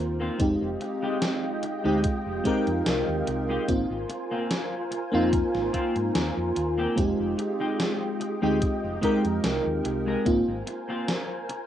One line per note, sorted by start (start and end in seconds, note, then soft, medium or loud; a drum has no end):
0.00 0.28 D#2 medium
0.00 0.35 A#3 medium
0.00 0.35 C4 medium
0.00 0.36 D#4 medium
0.00 0.36 F4 medium
0.00 0.37 A#4 medium
0.00 0.37 C5 medium
0.20 0.40 A#3 medium
0.20 0.40 C4 medium
0.20 0.40 F4 medium
0.38 0.55 F1 loud
0.38 1.79 G#3 medium
0.38 3.65 G#3 medium
0.38 1.80 C4 medium
0.38 1.80 D#4 medium
0.38 11.66 F4 medium
0.38 1.81 G4 medium
0.38 3.65 D#5 medium
0.38 3.65 G5 medium
0.38 kick loud
0.38 closed hi-hat medium
0.62 0.75 F1 medium
0.80 muted clean electric guitar stroke medium
0.80 closed hi-hat medium
1.02 1.22 G#3 medium
1.02 1.22 D#4 medium
1.02 1.23 G4 medium
1.22 snare loud
1.22 closed hi-hat medium
1.63 muted clean electric guitar stroke medium
1.63 closed hi-hat medium
1.84 2.04 D2 medium
1.84 2.40 G#3 medium
1.84 2.04 G#3 medium
1.84 2.41 C4 medium
1.84 2.04 D#4 medium
1.84 2.41 D#4 medium
1.84 2.41 G4 medium
1.84 2.05 G4 medium
2.04 muted fingered electric bass stroke soft
2.04 kick loud
2.04 closed hi-hat medium
2.26 2.40 F1 medium
2.44 3.63 G#3 medium
2.44 2.67 G#3 medium
2.44 3.64 C4 medium
2.44 2.67 D#4 medium
2.44 3.64 D#4 medium
2.44 2.68 G4 medium
2.44 3.65 A#4 medium
2.44 kick medium
2.44 closed hi-hat medium
2.67 2.81 F2 medium
2.67 closed hi-hat soft
2.86 3.02 C2 medium
2.86 snare loud
2.86 closed hi-hat medium
3.08 3.22 D#2 medium
3.27 3.57 C2 medium
3.27 muted clean electric guitar stroke medium
3.27 closed hi-hat medium
3.49 3.68 G#3 medium
3.49 3.69 D#4 medium
3.49 3.69 G4 medium
3.68 3.84 G#1 loud
3.68 3.86 A#3 medium
3.68 3.86 C4 medium
3.68 3.86 D#4 medium
3.68 3.87 F4 medium
3.68 6.94 A#4 medium
3.68 6.94 C5 medium
3.68 6.94 G#5 medium
3.68 kick loud
3.68 closed hi-hat medium
3.90 4.04 G#1 medium
4.09 muted clean electric guitar stroke medium
4.09 closed hi-hat medium
4.31 4.51 A#3 medium
4.31 4.51 C4 medium
4.31 4.51 F4 medium
4.51 snare loud
4.51 closed hi-hat medium
4.91 muted clean electric guitar stroke medium
4.91 closed hi-hat medium
5.12 5.41 F2 medium
5.12 6.92 A#3 medium
5.12 5.33 A#3 medium
5.12 6.92 C4 medium
5.12 5.33 C4 medium
5.12 6.93 D#4 medium
5.12 5.33 F4 medium
5.12 6.93 F4 loud
5.33 kick loud
5.33 closed hi-hat medium
5.55 5.68 G#1 medium
5.55 snare soft
5.73 5.96 A#3 medium
5.73 5.96 C4 medium
5.73 5.96 F4 medium
5.73 kick medium
5.73 closed hi-hat medium
5.96 6.09 G#2 medium
5.96 closed hi-hat soft
6.15 6.30 D#2 medium
6.15 snare loud
6.15 closed hi-hat medium
6.37 6.51 F2 medium
6.56 6.86 D#2 medium
6.56 muted clean electric guitar stroke medium
6.56 closed hi-hat medium
6.78 6.97 A#3 medium
6.78 6.98 C4 medium
6.78 6.98 G4 medium
6.96 7.13 F1 loud
6.96 8.36 G#3 medium
6.96 10.23 G#3 medium
6.96 8.37 C4 medium
6.96 8.38 D#4 medium
6.96 8.38 G4 medium
6.96 10.23 D#5 medium
6.96 10.23 G5 medium
6.96 kick loud
6.96 closed hi-hat medium
7.20 7.33 F1 medium
7.38 muted clean electric guitar stroke medium
7.38 closed hi-hat medium
7.60 7.79 G#3 medium
7.60 7.80 D#4 medium
7.60 7.80 G4 medium
7.80 snare loud
7.80 closed hi-hat medium
8.20 muted clean electric guitar stroke medium
8.20 closed hi-hat medium
8.42 8.61 D2 loud
8.42 8.61 G#3 medium
8.42 8.98 G#3 medium
8.42 8.98 C4 medium
8.42 8.62 D#4 medium
8.42 8.99 D#4 medium
8.42 8.62 G4 medium
8.42 8.99 G4 medium
8.62 kick loud
8.62 closed hi-hat medium
8.84 8.97 F1 medium
9.01 10.21 G#3 medium
9.01 9.24 G#3 medium
9.01 10.21 C4 medium
9.01 9.25 D#4 medium
9.01 10.22 D#4 medium
9.01 9.25 G4 loud
9.01 10.22 A#4 loud
9.01 kick medium
9.01 closed hi-hat medium
9.25 9.38 F2 medium
9.25 closed hi-hat soft
9.44 9.59 C2 medium
9.44 snare loud
9.44 closed hi-hat medium
9.66 9.79 D#2 medium
9.85 10.14 C2 medium
9.85 muted clean electric guitar stroke medium
9.85 closed hi-hat medium
10.07 10.26 G#3 medium
10.07 10.26 D#4 medium
10.07 10.27 A#4 medium
10.25 10.41 G#1 loud
10.25 10.43 A#3 medium
10.25 10.44 C4 medium
10.25 10.44 D#4 medium
10.25 10.44 F4 medium
10.25 11.66 A#4 medium
10.25 11.66 C5 medium
10.25 11.66 G#5 medium
10.25 kick loud
10.25 closed hi-hat medium
10.48 10.61 G#1 medium
10.67 muted clean electric guitar stroke medium
10.67 closed hi-hat medium
10.89 11.08 A#3 medium
10.89 11.09 C4 medium
10.89 11.09 F4 medium
11.08 snare loud
11.08 closed hi-hat medium
11.49 muted clean electric guitar stroke medium
11.49 closed hi-hat medium